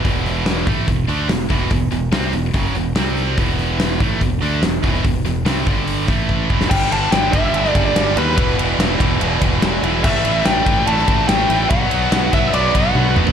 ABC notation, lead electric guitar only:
X:1
M:4/4
L:1/16
Q:1/4=144
K:Em
V:1 name="Lead electric guitar"
z16 | z16 | z16 | z16 |
g2 a2 g2 e4- e d3 B2- | B2 z12 z2 | e4 g4 a4 g4 | f6 e2 d2 f4 z2 |]